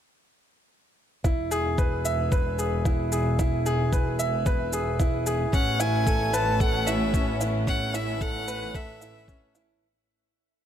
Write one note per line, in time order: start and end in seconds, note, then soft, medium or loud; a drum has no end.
1.24 5.50 E1 medium
1.24 1.40 E4 medium
1.24 kick medium
1.24 shaker soft
1.51 1.77 G#4 medium
1.51 shaker soft
1.78 1.94 B4 medium
1.78 kick medium
1.78 shaker soft
2.05 2.30 E5 medium
2.05 shaker medium
2.32 2.57 B4 medium
2.32 kick medium
2.32 shaker soft
2.59 2.84 G#4 medium
2.59 shaker soft
2.85 3.11 E4 medium
2.85 kick medium
2.85 shaker soft
3.12 3.38 G#4 medium
3.12 shaker medium
3.39 3.54 E4 medium
3.39 kick medium
3.39 shaker soft
3.66 3.91 G#4 medium
3.66 shaker soft
3.93 4.08 B4 medium
3.93 kick medium
3.93 shaker soft
4.19 4.45 E5 medium
4.19 shaker medium
4.46 4.72 B4 medium
4.46 kick medium
4.46 shaker soft
4.73 4.98 G#4 medium
4.73 shaker medium
5.00 5.25 E4 medium
5.00 kick medium
5.00 shaker soft
5.26 5.52 G#4 medium
5.26 shaker medium
5.53 9.79 A1 medium
5.53 9.78 A3 medium
5.53 9.78 B3 medium
5.53 5.69 C#4 medium
5.53 9.78 C#4 medium
5.53 5.82 F#5 medium
5.53 kick medium
5.53 shaker soft
5.80 6.05 E4 medium
5.80 6.36 G#5 medium
5.80 shaker medium
6.07 6.22 A4 medium
6.07 kick loud
6.07 shaker soft
6.33 6.59 B4 medium
6.33 6.62 A5 loud
6.33 shaker medium
6.60 6.86 A4 medium
6.60 6.88 F#5 loud
6.60 kick loud
6.60 shaker soft
6.87 7.13 E4 medium
6.87 7.41 E5 medium
6.87 shaker medium
7.14 7.39 C#4 medium
7.14 kick loud
7.14 shaker soft
7.41 7.66 E4 medium
7.41 shaker medium
7.67 7.83 C#4 medium
7.67 7.97 F#5 loud
7.67 kick loud
7.67 shaker soft
7.94 8.20 E4 medium
7.94 8.23 E5 medium
7.94 shaker medium
8.21 8.36 A4 medium
8.21 8.77 F#5 loud
8.21 kick loud
8.21 shaker soft
8.48 8.73 B4 medium
8.48 shaker medium
8.74 9.00 A4 medium
8.74 9.55 E5 medium
8.74 kick loud
8.74 shaker soft
9.01 9.27 E4 medium
9.01 shaker medium
9.28 9.54 C#4 medium
9.28 kick loud
9.28 shaker soft
9.55 9.80 E4 medium
9.55 shaker medium